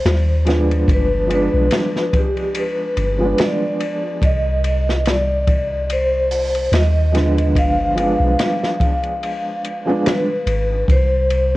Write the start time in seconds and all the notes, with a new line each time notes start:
Already playing: C5
0.05 D#2, snare, ride
0.45 F3 G#3 B3 D4, snare, ride
0.71 ride
0.88 G1, kick, ride
0.93 B4
1.27 F3 G#3, ride
1.31 B3 D4 B4
1.54 B1
1.71 snare, ride
1.96 snare
2.13 G4, kick, ride
2.37 ride
2.55 ride
2.59 B4
2.97 G1, ride
3.18 F3 G#3
3.23 B3 D4
3.38 D5, snare, ride
3.81 ride
4.22 C2 D#5, kick, ride
4.64 ride
4.89 snare
5.05 snare, ride
5.09 D5
5.47 kick, ride
5.89 C5, ride
6.31 open hi-hat
6.55 ride
6.72 D#2 D#5, snare, ride
7.12 F3 G#3 B3, ride
7.16 D3, snare
7.38 ride
7.55 G1 F5, kick, ride
7.94 F3 G#3, ride
7.99 B3 D4
8.20 B1
8.39 snare, ride
8.63 snare
8.80 kick, ride
9.03 ride
9.23 ride
9.65 ride
9.86 F3 G#3 B3 D4
10.06 B4, snare, ride
10.46 G#1, ride
10.88 C2 C5, kick, ride
11.30 ride